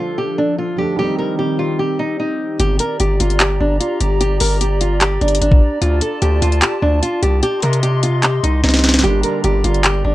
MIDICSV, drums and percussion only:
0, 0, Header, 1, 2, 480
1, 0, Start_track
1, 0, Key_signature, -2, "minor"
1, 0, Tempo, 402685
1, 1174, Time_signature, 4, 2, 24, 8
1, 12098, End_track
2, 0, Start_track
2, 0, Title_t, "Drums"
2, 3094, Note_on_c, 9, 42, 69
2, 3213, Note_off_c, 9, 42, 0
2, 3327, Note_on_c, 9, 42, 75
2, 3447, Note_off_c, 9, 42, 0
2, 3573, Note_on_c, 9, 42, 74
2, 3692, Note_off_c, 9, 42, 0
2, 3815, Note_on_c, 9, 42, 67
2, 3934, Note_off_c, 9, 42, 0
2, 3935, Note_on_c, 9, 42, 39
2, 4049, Note_off_c, 9, 42, 0
2, 4049, Note_on_c, 9, 42, 89
2, 4054, Note_on_c, 9, 39, 122
2, 4169, Note_off_c, 9, 42, 0
2, 4173, Note_off_c, 9, 39, 0
2, 4536, Note_on_c, 9, 42, 71
2, 4655, Note_off_c, 9, 42, 0
2, 4774, Note_on_c, 9, 42, 90
2, 4893, Note_off_c, 9, 42, 0
2, 5014, Note_on_c, 9, 42, 73
2, 5133, Note_off_c, 9, 42, 0
2, 5248, Note_on_c, 9, 46, 84
2, 5367, Note_off_c, 9, 46, 0
2, 5494, Note_on_c, 9, 42, 76
2, 5613, Note_off_c, 9, 42, 0
2, 5730, Note_on_c, 9, 42, 69
2, 5850, Note_off_c, 9, 42, 0
2, 5970, Note_on_c, 9, 42, 89
2, 5975, Note_on_c, 9, 39, 125
2, 6089, Note_off_c, 9, 42, 0
2, 6094, Note_off_c, 9, 39, 0
2, 6214, Note_on_c, 9, 42, 47
2, 6294, Note_off_c, 9, 42, 0
2, 6294, Note_on_c, 9, 42, 66
2, 6374, Note_off_c, 9, 42, 0
2, 6374, Note_on_c, 9, 42, 81
2, 6456, Note_off_c, 9, 42, 0
2, 6456, Note_on_c, 9, 42, 71
2, 6574, Note_on_c, 9, 36, 99
2, 6575, Note_off_c, 9, 42, 0
2, 6693, Note_off_c, 9, 36, 0
2, 6933, Note_on_c, 9, 42, 71
2, 7052, Note_off_c, 9, 42, 0
2, 7167, Note_on_c, 9, 42, 73
2, 7286, Note_off_c, 9, 42, 0
2, 7412, Note_on_c, 9, 42, 74
2, 7531, Note_off_c, 9, 42, 0
2, 7653, Note_on_c, 9, 42, 65
2, 7773, Note_off_c, 9, 42, 0
2, 7774, Note_on_c, 9, 42, 40
2, 7887, Note_off_c, 9, 42, 0
2, 7887, Note_on_c, 9, 42, 86
2, 7892, Note_on_c, 9, 39, 123
2, 8007, Note_off_c, 9, 42, 0
2, 8011, Note_off_c, 9, 39, 0
2, 8376, Note_on_c, 9, 42, 72
2, 8495, Note_off_c, 9, 42, 0
2, 8614, Note_on_c, 9, 42, 90
2, 8733, Note_off_c, 9, 42, 0
2, 8853, Note_on_c, 9, 42, 71
2, 8972, Note_off_c, 9, 42, 0
2, 9087, Note_on_c, 9, 46, 82
2, 9094, Note_on_c, 9, 42, 45
2, 9207, Note_off_c, 9, 46, 0
2, 9214, Note_off_c, 9, 42, 0
2, 9214, Note_on_c, 9, 42, 79
2, 9333, Note_off_c, 9, 42, 0
2, 9333, Note_on_c, 9, 42, 75
2, 9452, Note_off_c, 9, 42, 0
2, 9570, Note_on_c, 9, 42, 69
2, 9690, Note_off_c, 9, 42, 0
2, 9809, Note_on_c, 9, 42, 90
2, 9814, Note_on_c, 9, 39, 127
2, 9928, Note_off_c, 9, 42, 0
2, 9933, Note_off_c, 9, 39, 0
2, 10058, Note_on_c, 9, 42, 74
2, 10177, Note_off_c, 9, 42, 0
2, 10295, Note_on_c, 9, 38, 62
2, 10295, Note_on_c, 9, 42, 44
2, 10355, Note_off_c, 9, 38, 0
2, 10355, Note_on_c, 9, 38, 62
2, 10375, Note_off_c, 9, 42, 0
2, 10375, Note_on_c, 9, 42, 59
2, 10415, Note_off_c, 9, 38, 0
2, 10415, Note_on_c, 9, 38, 81
2, 10454, Note_off_c, 9, 42, 0
2, 10454, Note_on_c, 9, 42, 75
2, 10475, Note_off_c, 9, 38, 0
2, 10475, Note_on_c, 9, 38, 77
2, 10534, Note_off_c, 9, 38, 0
2, 10534, Note_on_c, 9, 38, 96
2, 10573, Note_off_c, 9, 42, 0
2, 10594, Note_off_c, 9, 38, 0
2, 10594, Note_on_c, 9, 38, 89
2, 10654, Note_off_c, 9, 38, 0
2, 10654, Note_on_c, 9, 38, 111
2, 10713, Note_off_c, 9, 38, 0
2, 10713, Note_on_c, 9, 38, 100
2, 10773, Note_on_c, 9, 42, 68
2, 10832, Note_off_c, 9, 38, 0
2, 10892, Note_off_c, 9, 42, 0
2, 11007, Note_on_c, 9, 42, 75
2, 11126, Note_off_c, 9, 42, 0
2, 11251, Note_on_c, 9, 42, 75
2, 11370, Note_off_c, 9, 42, 0
2, 11494, Note_on_c, 9, 42, 66
2, 11613, Note_off_c, 9, 42, 0
2, 11615, Note_on_c, 9, 42, 40
2, 11729, Note_off_c, 9, 42, 0
2, 11729, Note_on_c, 9, 42, 89
2, 11734, Note_on_c, 9, 39, 125
2, 11848, Note_off_c, 9, 42, 0
2, 11853, Note_off_c, 9, 39, 0
2, 12098, End_track
0, 0, End_of_file